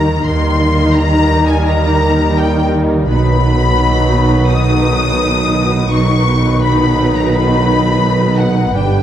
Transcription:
0.00 0.22 D#2 medium
0.00 0.23 D#3 medium
0.00 0.24 D#4 medium
0.00 0.24 A#4 medium
0.00 0.25 A#5 medium
0.00 0.26 A#5 medium
0.25 3.05 D#2 medium
0.25 3.05 D#3 medium
0.25 3.05 G3 medium
0.25 3.05 A#3 medium
0.25 3.05 D#4 medium
0.25 3.05 A#4 medium
0.25 0.96 C6 medium
0.25 0.95 C6 medium
0.95 1.49 A#5 medium
0.95 1.50 A#5 loud
1.48 1.67 G#5 medium
1.48 1.68 G#5 medium
1.66 2.36 A#5 medium
1.66 2.38 A#5 medium
2.37 2.73 G5 medium
2.37 2.74 G5 medium
3.08 5.87 B1 medium
3.08 5.87 B2 medium
3.08 5.87 D#3 medium
3.08 5.87 F#3 medium
3.08 5.88 B3 medium
3.08 5.87 D#4 medium
3.08 5.88 B4 medium
3.08 4.46 B5 loud
3.08 4.47 B5 medium
4.49 5.91 D#6 loud
4.49 5.91 D#6 medium
5.90 8.70 B1 medium
5.90 8.70 B2 medium
5.90 8.58 D#3 medium
5.90 8.58 F#3 medium
5.90 8.57 B3 medium
5.90 8.57 D#4 medium
5.90 8.70 D#4 medium
5.90 8.70 B4 medium
5.90 6.61 C#6 medium
5.90 6.61 C#6 loud
6.63 7.14 B5 loud
6.63 7.15 B5 medium
7.16 7.33 A#5 medium
7.33 8.39 B5 medium
8.38 8.73 F#5 medium
8.38 8.74 F#5 medium
8.74 9.03 G1 medium
8.74 9.03 G2 medium
8.74 9.03 D3 medium
8.74 9.03 G3 medium
8.74 9.03 B3 medium
8.74 9.03 D4 medium
8.74 9.03 G4 medium
8.74 9.03 B4 medium
8.74 9.03 G5 medium

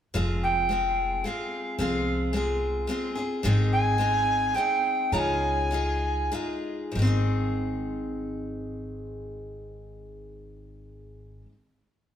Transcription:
0.14 1.21 F1 medium
0.14 0.69 F3 medium
0.14 0.69 G#3 medium
0.14 0.70 C4 medium
0.14 0.70 F4 medium
0.14 0.72 G#4 medium
0.43 1.27 G5 medium
0.69 1.24 G#3 medium
0.69 1.25 C4 medium
0.69 1.25 F4 medium
0.69 1.27 G#4 medium
1.24 1.79 G#3 soft
1.24 1.80 C4 medium
1.24 1.79 F4 medium
1.24 1.81 G#4 medium
1.24 1.79 F5 medium
1.79 2.85 C2 medium
1.79 2.34 F3 medium
1.79 2.33 G#3 medium
1.79 2.34 C4 medium
1.79 2.34 F4 medium
1.79 2.36 G#4 medium
1.79 2.31 F5 medium
2.33 2.87 G#3 medium
2.33 2.88 C4 medium
2.33 2.88 F4 medium
2.33 2.91 G#4 medium
2.87 3.16 G#3 medium
2.87 3.17 C4 medium
2.87 3.16 F4 medium
2.87 3.14 G#4 medium
3.15 3.44 C4 soft
3.15 3.45 F4 soft
3.15 3.44 G#4 soft
3.43 4.51 G#1 medium
3.43 3.99 G#2 medium
3.43 4.00 D#3 medium
3.43 3.98 G#3 medium
3.43 3.98 C4 medium
3.43 4.00 D#4 medium
3.43 4.01 G#4 medium
3.72 4.56 G#5 loud
3.98 4.54 G#3 medium
3.98 4.55 C4 soft
3.98 4.56 D#4 medium
3.98 4.58 G#4 medium
4.54 5.12 G#3 soft
4.54 5.13 C4 medium
4.54 5.13 D#4 medium
4.54 5.14 G#4 medium
4.54 5.14 G5 medium
5.12 6.28 C#2 medium
5.12 5.71 C#3 medium
5.12 5.70 G#3 medium
5.12 5.71 D#4 medium
5.12 5.72 F4 medium
5.12 5.72 G#4 medium
5.12 5.18 A#5 medium
5.17 6.32 G#5 medium
5.71 6.30 G#3 medium
5.71 6.31 D#4 medium
5.71 6.32 F4 medium
5.71 6.34 G#4 medium
6.32 6.95 G#3 medium
6.32 6.96 D#4 medium
6.32 6.96 F4 medium
6.32 6.97 G#4 medium
6.92 11.41 G#1 medium
6.92 11.41 G#2 medium
6.92 11.45 D#3 medium
6.99 11.49 G#3 medium
6.99 11.52 C4 medium
7.05 11.54 D#4 medium
7.05 11.57 G#4 medium

